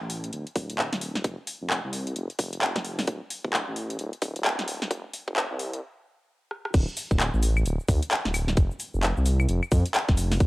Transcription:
0.01 detuned saw bass A1
0.10 open hi-hat
0.24 closed hi-hat
0.33 detuned saw bass D1, closed hi-hat
0.47 closed hi-hat
0.55 detuned saw bass D1, kick, open hi-hat
0.70 closed hi-hat
0.78 clap
0.92 detuned saw bass D1, snare, closed hi-hat
1.01 open hi-hat
1.15 snare, closed hi-hat
1.24 detuned saw bass F1, kick, closed hi-hat
1.47 open hi-hat
1.61 detuned saw bass F1
1.70 clap
1.84 detuned saw bass C2
1.93 open hi-hat
2.07 closed hi-hat
2.16 detuned saw bass F1, closed hi-hat
2.30 closed hi-hat
2.39 detuned saw bass F1, kick, open hi-hat
2.53 closed hi-hat
2.62 clap
2.76 detuned saw bass F1, kick, snare, closed hi-hat
2.85 open hi-hat
2.99 snare, open hi-hat
3.07 detuned saw bass D1, kick, closed hi-hat
3.30 open hi-hat
3.45 detuned saw bass D1, kick
3.53 clap
3.68 detuned saw bass A1
3.76 open hi-hat
3.90 closed hi-hat
3.99 detuned saw bass D1, closed hi-hat
4.13 closed hi-hat
4.22 detuned saw bass D1, kick, open hi-hat
4.36 closed hi-hat
4.45 clap
4.59 detuned saw bass D1, snare, closed hi-hat
4.68 open hi-hat
4.82 snare, closed hi-hat
4.91 detuned saw bass F1, kick, closed hi-hat
5.13 open hi-hat
5.28 detuned saw bass F1, kick
5.36 clap
5.51 detuned saw bass C2
5.59 open hi-hat
5.73 closed hi-hat
6.51 cross-stick
6.65 cross-stick
6.74 detuned saw bass D1, kick, closed hi-hat, crash, shaker
6.88 shaker
6.97 open hi-hat, shaker
7.11 detuned saw bass D1, kick, shaker
7.20 clap, closed hi-hat, shaker
7.34 detuned saw bass A1, shaker
7.43 open hi-hat, shaker
7.57 claves, shaker
7.66 detuned saw bass D1, closed hi-hat, shaker
7.80 shaker
7.88 detuned saw bass D2, kick, open hi-hat, shaker
8.03 closed hi-hat, shaker
8.11 clap, closed hi-hat, shaker
8.25 detuned saw bass D1, snare, closed hi-hat, shaker
8.34 open hi-hat, claves, shaker
8.48 snare, shaker
8.57 detuned saw bass F1, kick, closed hi-hat, shaker
8.71 shaker
8.80 open hi-hat, shaker
8.94 detuned saw bass F1, shaker
9.03 clap, closed hi-hat, shaker
9.17 detuned saw bass C2, shaker
9.26 open hi-hat, shaker
9.40 claves, shaker
9.49 detuned saw bass F1, closed hi-hat, shaker
9.63 claves, shaker
9.72 detuned saw bass F2, kick, open hi-hat, shaker
9.86 closed hi-hat, shaker
9.95 clap, closed hi-hat, shaker
10.09 detuned saw bass F1, kick, snare, closed hi-hat, shaker
10.17 open hi-hat, shaker
10.32 snare, open hi-hat, shaker
10.40 detuned saw bass D1, kick, closed hi-hat, shaker

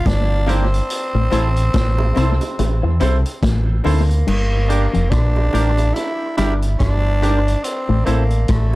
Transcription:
0.06 fingered electric bass G1, clean electric guitar G2, tenor saxophone D4, kick, snare, closed hi-hat
0.47 grand piano A#3 D4 G4 A#4, tenor saxophone C4, clean electric guitar D4 G4 A#4, closed hi-hat, low bongo
0.74 closed hi-hat
0.90 closed hi-hat
1.15 fingered electric bass A1, clean electric guitar A2
1.31 fingered electric bass A1, clean electric guitar A2 E4 A4 C5, grand piano C4 E4 A4 C5, closed hi-hat, high bongo
1.56 closed hi-hat
1.74 fingered electric bass A1, clean electric guitar A2, kick, snare, closed hi-hat
1.98 high bongo
2.15 fingered electric bass C2, clean electric guitar C3 E4 A4 C5, grand piano C4 E4 A4 C5, closed hi-hat, low bongo
2.41 closed hi-hat, high bongo
2.59 fingered electric bass A1, clean electric guitar A2, closed hi-hat, high bongo
2.83 fingered electric bass E2, clean electric guitar E3, muted clean electric guitar stroke
3.00 fingered electric bass C2, clean electric guitar C3 E4 A4 C5, grand piano C4 E4 A4 C5, closed hi-hat, high bongo
3.26 closed hi-hat
3.43 fingered electric bass A1, clean electric guitar A2, kick, snare, closed hi-hat
3.84 fingered electric bass D2, clean electric guitar D3 E4 A4 C5, tenor saxophone A#3, grand piano C4 E4 A4 C5, open hi-hat, low bongo
4.09 muted clean electric guitar stroke, closed hi-hat
4.27 fingered electric bass G1, clean electric guitar G2, crash
4.68 grand piano D4 G4 A#4 D5, clean electric guitar D4 G4 A#4, closed hi-hat
4.94 fingered electric bass F1, clean electric guitar F2, closed hi-hat
5.10 fingered electric bass A#1, clean electric guitar A#2, tenor saxophone D4, kick, cross-stick, closed hi-hat
5.36 high bongo
5.53 fingered electric bass A1, clean electric guitar A2 D4 G4 A#4, grand piano D4 G4 A#4 D5, closed hi-hat, low bongo
5.78 closed hi-hat, high bongo
5.94 tenor saxophone E4, closed hi-hat, high bongo
6.37 fingered electric bass G1, clean electric guitar G2 D4 G4 A#4, grand piano D4 G4 A#4 D5, tenor saxophone E4, closed hi-hat, high bongo
6.62 closed hi-hat
6.79 fingered electric bass G1, clean electric guitar G2, tenor saxophone D4, kick, cross-stick, closed hi-hat
7.22 grand piano D4 G4 A#4 D5, clean electric guitar D4 G4 A#4, closed hi-hat, low bongo
7.48 closed hi-hat
7.64 tenor saxophone C4, closed hi-hat
7.89 fingered electric bass A1, clean electric guitar A2
8.06 fingered electric bass A1, clean electric guitar A2 C4 E4 A4, tenor saxophone A#3, grand piano C4 E4 A4 C5, closed hi-hat
8.30 closed hi-hat
8.48 fingered electric bass A1, clean electric guitar A2, tenor saxophone A3, kick, cross-stick, closed hi-hat

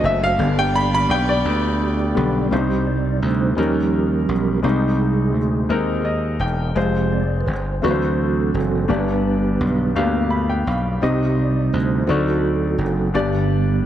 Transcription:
Already playing: grand piano E3 F#3 C4, tonewheel organ A3 D4 F#4 C5, string section D4 F#4 A4 C5
0.00 slap bass F#1, grand piano D#5
0.05 grand piano E5
0.24 grand piano F5
0.38 slap bass G1, grand piano D3 G3 B3, tonewheel organ B3 G4 D5, string section G4 B4 D5
0.59 grand piano G5
0.76 grand piano B5
0.94 grand piano B5
1.09 slap bass B1, grand piano G5
1.29 grand piano D5
1.45 slap bass D2
2.14 slap bass B1, grand piano D3 G3 B3
2.51 slap bass C2, tonewheel organ C3 G3 C4 D#4 G4, grand piano C3 G3 C4 D4 C5
2.58 grand piano D#4
2.87 tonewheel organ D5
3.22 slap bass D2, tonewheel organ C5
3.57 slap bass D#2, grand piano D#3 G3 C#4 D#4 A#4, tonewheel organ F3 G3 C#4 G4 A#4
4.29 slap bass B1
4.63 slap bass C2, grand piano C3 G#3 C4 D#4 C5, tonewheel organ C3 G#3 C4 D#4 G#4
5.34 slap bass D2
5.69 slap bass D#2, tonewheel organ D#3 G#3 C4, grand piano G#3 C4 D#4 A#4
6.05 grand piano D#5
6.39 slap bass E1, grand piano G5
6.75 slap bass F1, tonewheel organ F3 G#3 C4 G4, grand piano G#3 C4 F4 C5
7.12 tonewheel organ D5
7.41 tonewheel organ B4
7.47 slap bass G1, tonewheel organ C5
7.82 slap bass D2, grand piano D3 A3 D4 F#4 B4, tonewheel organ E3 F#3 C4 F#4 A4
7.91 grand piano C5
8.54 slap bass F#1
8.88 slap bass G1, grand piano G2 B3 D4 G4 D5, tonewheel organ D3 G3 B3 D4 G4 B4
9.61 slap bass B1
9.95 slap bass D2, grand piano A#3 D4 G4 F5
10.02 grand piano B3
10.31 grand piano B5
10.49 grand piano G5
10.67 slap bass B1, grand piano F5
11.01 slap bass C2, tonewheel organ C3 G3 C4 D#4 G4, grand piano C3 C4 D#4 G4 D#5
11.39 tonewheel organ D5
11.73 slap bass D2, tonewheel organ C5
12.07 slap bass D2, grand piano D3 C4 D#4 F#4 D5, tonewheel organ F#3 C4 D#4 F#4 A4
12.78 slap bass F#1
13.14 slap bass G1, grand piano G2 B3 D4 G4 D5, tonewheel organ D3 G3 B3 D4 G4

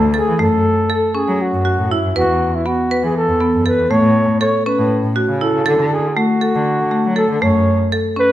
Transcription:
Already playing: cello D2, marimba A3, flugelhorn A4
0.14 flugelhorn G#4, marimba A4
0.28 cello E3
0.39 cello F#2, marimba A3, flugelhorn A4
0.53 cello F#2
0.90 marimba A4
1.15 marimba C#4, flugelhorn G#4
1.28 cello F#3
1.41 flugelhorn F#4
1.53 cello F#2
1.65 marimba F#4
1.78 cello A2
1.91 marimba E4, flugelhorn E4
2.03 cello F#2
2.15 cello E2, flugelhorn F#4, marimba B4
2.28 cello E2
2.55 flugelhorn E4
2.66 marimba B3, flugelhorn F#4
2.91 marimba B4
3.03 cello E3, flugelhorn G#4
3.17 flugelhorn A4
3.28 cello E2
3.40 marimba B3
3.54 cello F#2
3.66 marimba A4, flugelhorn B4
3.78 cello E2
3.90 cello A2, marimba A3, flugelhorn C#5
4.03 cello A2
4.41 marimba A4, flugelhorn C#5
4.66 marimba C#4, flugelhorn B4
4.79 cello A2
5.04 cello A2
5.16 marimba F#4
5.28 cello C#3
5.41 marimba E4, flugelhorn A4
5.54 cello C#3
5.66 cello D3, marimba A4
5.80 cello D3
5.92 flugelhorn G#4
6.16 marimba A3, flugelhorn F#4
6.41 marimba A4
6.55 cello D3
6.80 cello D3
6.91 marimba A3
7.06 cello F#3
7.16 marimba A4, flugelhorn A4
7.30 cello D3
7.42 cello F#2, marimba A3, flugelhorn C#5
7.56 cello F#2
7.92 marimba A4
8.16 marimba C#4, flugelhorn B4

